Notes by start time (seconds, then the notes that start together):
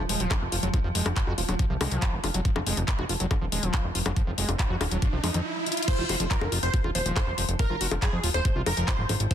Already playing: F3
0.09 D#1 G#3, open hi-hat
0.20 D#1 F3, closed hi-hat
0.31 kick, clap, closed hi-hat, high bongo
0.41 F1 F4
0.52 F1 F4, open hi-hat
0.63 F1 F#3, closed hi-hat
0.74 F3, kick, closed hi-hat, high bongo
0.84 F1 F3
0.95 F1 G#3, open hi-hat
1.06 F1 F3, closed hi-hat, high bongo
1.16 kick, clap, closed hi-hat
1.27 F2 F#4
1.38 D#1 F4, open hi-hat
1.49 D#1 F#3, closed hi-hat, high bongo
1.59 F3, kick, closed hi-hat
1.70 C2 F3
1.81 C2 G#3, open hi-hat, high bongo
1.91 C2 F3, closed hi-hat
2.02 kick, clap, closed hi-hat
2.13 F1 F4
2.24 F1 F4, open hi-hat, high bongo
2.34 F1 F#3, closed hi-hat
2.45 F3, kick, closed hi-hat, riser
2.56 F1 F3, high bongo
2.66 F1 G#3, open hi-hat
2.77 F1 F3, closed hi-hat
2.88 kick, clap, closed hi-hat
2.99 F1 F#4, high bongo
3.09 F1 F4, open hi-hat
3.20 F1 F#3, closed hi-hat
3.31 F3, kick, closed hi-hat, high bongo
3.41 D#1 F3
3.52 D#1 G#3, open hi-hat
3.63 D#1 F3, closed hi-hat
3.74 kick, clap, closed hi-hat, high bongo
3.84 F1 F4
3.95 F1 F4, open hi-hat
4.06 F1 F#3, closed hi-hat, high bongo
4.16 F3, kick, closed hi-hat
4.27 F1 F3
4.38 F1 G#3, open hi-hat
4.49 F1 F3, closed hi-hat, high bongo
4.59 kick, clap, closed hi-hat
4.70 F2 F#4
4.81 D#1 F4, open hi-hat, high bongo
4.91 D#1 F#3, closed hi-hat
5.02 F3, kick, closed hi-hat
5.13 C2 F3
5.24 F2 G#3, open hi-hat, high bongo
5.34 F2 D#3, closed hi-hat
5.66 closed hi-hat
5.72 closed hi-hat
5.77 closed hi-hat
5.83 closed hi-hat
5.88 F3 C5, kick, closed hi-hat, crash
5.99 F1 F4
6.09 F1 F#4, open hi-hat, high bongo
6.20 F1 F3, closed hi-hat
6.31 F#3 A#4, kick, clap, closed hi-hat
6.41 F1 F3, high bongo
6.52 F1 F4, open hi-hat
6.63 F1 C5, closed hi-hat
6.74 F#4, kick, closed hi-hat
6.84 D#1 F4, high bongo
6.95 D#1 F3 C5, open hi-hat
7.06 D#1 F3, closed hi-hat
7.16 F#3 C5, kick, clap, closed hi-hat, high bongo
7.27 F1 F3
7.38 F1 F3, open hi-hat
7.49 F1, closed hi-hat
7.59 F3 A#4, kick, closed hi-hat, high bongo
7.70 F1 F4
7.81 F1 F#4, open hi-hat
7.91 F1 F3, closed hi-hat, high bongo
8.02 F#3 G#4, kick, clap, closed hi-hat
8.13 F2 F3
8.24 D#1 F4, open hi-hat
8.34 D#1 C5, closed hi-hat, high bongo
8.45 F#4, kick, closed hi-hat
8.56 C2 F4
8.66 F1 F3 A#4, open hi-hat, high bongo
8.77 F1 F3, closed hi-hat
8.88 F#3 C5, kick, clap, closed hi-hat
8.99 G#1 F3
9.09 G#1 F3, open hi-hat, high bongo
9.20 G#1, closed hi-hat
9.31 F3 C5, kick, closed hi-hat